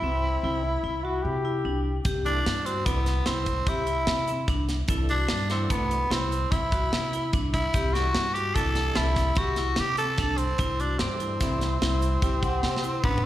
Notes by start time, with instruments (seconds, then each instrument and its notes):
Already playing: tenor saxophone E4
0.02 upright bass C2, vibraphone C4, flugelhorn C4
0.43 upright bass C2, vibraphone E4
0.63 flugelhorn E4
0.83 upright bass C2, vibraphone E4
1.04 flugelhorn F#4, vibraphone F#4
1.22 upright bass C3, flugelhorn G4
1.45 vibraphone E4
1.65 upright bass C2, vibraphone D4
2.05 upright bass C2, vibraphone G4, kick, closed hi-hat, shaker
2.25 tonewheel organ E3 A3 D4 G4, tenor saxophone D4, vibraphone E4, closed hi-hat, shaker
2.46 upright bass G2, snare, closed hi-hat
2.66 tenor saxophone C4, vibraphone F#4, closed hi-hat
2.86 upright bass C2, tonewheel organ E3 A3 D4 G4, tenor saxophone B3, vibraphone E4, kick, closed hi-hat, shaker
3.06 snare, closed hi-hat
3.26 upright bass C2, tenor saxophone C4, vibraphone E4, snare, closed hi-hat
3.46 kick, closed hi-hat
3.67 upright bass C2, tenor saxophone E4, vibraphone G4, kick, closed hi-hat
3.87 vibraphone E4, closed hi-hat
4.07 upright bass C3, snare, closed hi-hat
4.28 vibraphone C4, closed hi-hat, shaker
4.48 upright bass C2, vibraphone D4, kick, closed hi-hat, shaker
4.69 snare, closed hi-hat
4.88 upright bass C2, tonewheel organ E3 A3 D4 A4, vibraphone E4, kick, closed hi-hat, shaker
5.09 tenor saxophone D4, vibraphone F#4, closed hi-hat
5.29 upright bass G2, snare, closed hi-hat
5.50 tonewheel organ E3 A3 D4 F#4, tenor saxophone C4, vibraphone E4, snare, closed hi-hat
5.70 upright bass C2, vibraphone A3, tenor saxophone B3, kick, closed hi-hat, shaker
5.91 closed hi-hat
6.10 upright bass C2, tenor saxophone C4, vibraphone E4, snare, closed hi-hat
6.32 closed hi-hat, shaker
6.51 upright bass C2, tenor saxophone E4, vibraphone E4, kick, closed hi-hat
6.72 vibraphone F#4, kick, closed hi-hat
6.92 upright bass C3, snare, closed hi-hat
7.13 vibraphone E4, closed hi-hat, shaker
7.33 upright bass C2, vibraphone D4, kick, closed hi-hat, shaker
7.53 tenor saxophone E4, kick, closed hi-hat
7.74 upright bass C2, vibraphone G4, kick, closed hi-hat, shaker
7.93 tonewheel organ E3 A3 D4 G4, vibraphone E4, tenor saxophone F#4, snare, closed hi-hat, shaker
8.15 upright bass G2, snare, closed hi-hat
8.34 vibraphone F#4, tenor saxophone G4, closed hi-hat
8.55 upright bass C2, tonewheel organ E3 A3 D4 G4, vibraphone E4, tenor saxophone A4, kick, closed hi-hat, shaker
8.75 snare, closed hi-hat
8.95 upright bass C2, tenor saxophone E4, vibraphone E4, snare, closed hi-hat
9.16 kick, snare, closed hi-hat, shaker
9.35 upright bass C2, tenor saxophone F#4, vibraphone G4, kick, closed hi-hat
9.56 vibraphone E4, snare, closed hi-hat
9.76 upright bass C3, tenor saxophone G4, snare, closed hi-hat
9.97 vibraphone C4, tenor saxophone A4, closed hi-hat, shaker
10.18 upright bass C2, vibraphone D4, kick, snare, closed hi-hat, shaker
10.38 tenor saxophone C4, closed hi-hat
10.58 upright bass C2, vibraphone E4, kick, closed hi-hat, shaker
10.80 tenor saxophone D4, vibraphone F#4, closed hi-hat, shaker
10.98 upright bass G2, tonewheel organ E3 A3 D4 G4, tenor saxophone C4, snare, closed hi-hat
11.20 vibraphone E4, closed hi-hat, shaker
11.40 upright bass C2, tonewheel organ E3 A3 D4 G4, vibraphone C4, flugelhorn E4, kick, snare, closed hi-hat, shaker
11.61 snare, closed hi-hat
11.81 upright bass C2, flugelhorn E4, vibraphone E4, snare, closed hi-hat
12.02 closed hi-hat, shaker
12.22 upright bass C2, vibraphone E4, flugelhorn G4, kick, closed hi-hat
12.43 vibraphone F#5, kick, closed hi-hat
12.63 upright bass C3, snare
12.77 snare
12.83 vibraphone E4, shaker
13.03 upright bass A1, tenor saxophone B3, vibraphone D4, kick, mid tom, shaker
13.18 mid tom